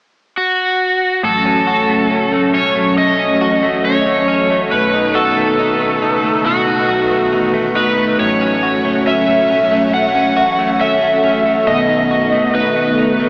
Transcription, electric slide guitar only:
0.37 F#4
1.25 A4
2.54 C#5
2.98 D#5
3.85 C#5
4.71 B4
5.15 A4
6.46 F#4
7.77 B4
8.20 C#5
9.07 E5
9.94 F#5
10.81 E5
11.67 D#5
12.55 B4

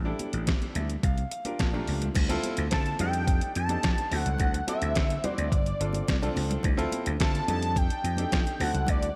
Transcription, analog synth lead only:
2.73 A5
3.01 G5
3.57 A5
4.13 F#5
4.69 E5
5.24 D5
7.21 A5
7.49 A5
7.77 G5
8.61 F#5
8.89 D5

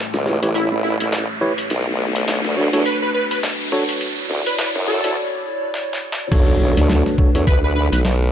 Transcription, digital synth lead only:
0.55 E4
0.84 E4
1.00 E4
2.86 B4
3.02 B4
3.14 B4
3.31 B4
4.47 B4
4.59 B4
4.87 A4
7.47 B4
7.64 B4
7.76 B4
7.92 B4

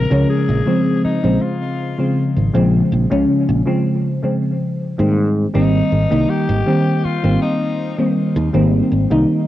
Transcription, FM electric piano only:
0.10 C#3 F3 G#3 C#4
0.66 C#3 F3 G#3 C4
1.23 C#3 F3 G#3 C4
1.98 C#3 F3 G#3 C4
2.53 C#3 F3 G#3 C4
3.10 C#3 F3 G#3 C#4
3.66 C#3 F3 G#3 C4
4.23 C#3 F3 G#3 C4
4.98 D#3 G3 A#3 C4
5.54 D#3 G3 A#3 C4
6.10 D#3 G3 A#3 D#4
6.66 D#3 G3 A#3 C4
7.23 D#3 G3 A#3 C4
7.98 D#3 G3 A#3 C4
8.53 D#3 G3 A#3 C4
9.10 D#3 G3 A#3 D#4

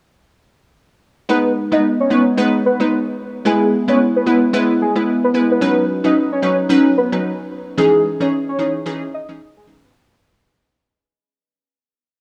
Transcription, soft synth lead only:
1.30 B4
1.73 D#5
2.00 C#5
2.12 C#5
2.66 B4
3.46 G#4
3.89 C#5
4.16 B4
4.28 B4
4.82 G#4
5.24 B4
5.51 B4
5.63 B4
6.05 D#5
6.32 C#5
6.43 C#5
6.97 B4
7.79 G#4
8.21 C#5
8.49 C#5
8.60 C#5
9.14 D#5
9.56 G#4
9.84 B4

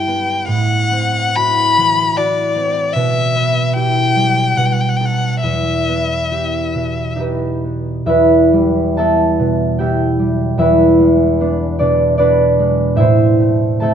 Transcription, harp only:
Already playing: G2 G3 E4 G4
0.07 B3
0.48 A2
0.92 C4
1.37 E4 F#4
1.77 E3
2.17 E4 F#4
2.56 C4
2.95 B2
3.35 B3
3.76 E4 G4
4.16 G3
4.57 B2
5.00 D#4 A4
5.43 E2
5.88 B3
6.31 E4 G4
6.74 B2
7.16 D#4 E4 G4 D#5
7.20 B4
7.64 B3
8.06 E2 E4 B4 E5
8.53 G3
8.97 B3 E4 A4 E5 A5
9.39 B2
9.79 B3 E4 G4 E5 G5
10.19 G3
10.58 E2 E4 B4 E5
10.99 G#3
11.40 B3 D4
11.79 B2 D4 D5
12.18 B3 D4 B4 D5
12.59 G#3
12.96 A2 E4 E5
13.00 C5
13.40 A3
13.80 A3 C4 A4 E5 A5

